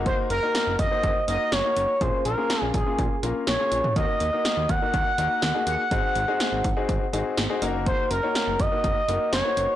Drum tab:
HH |x-x-x-x-x-x-x-x-|x-x-x-x-x-x-x-x-|x-x-x-x-x-x-x-x-|x-x-x-x-x-x-x-x-|
SD |----o-------o---|----o-------o---|----o-------o---|----o-------o---|
T2 |----------------|---------------o|----------------|----------------|
BD |o-----o-o-------|o-----o-o-------|o-----o-o-------|o-----o-o-------|

HH |x-x-x-x-x-x-x-x-|
SD |----o-------o---|
T2 |----------------|
BD |o-----o-o-------|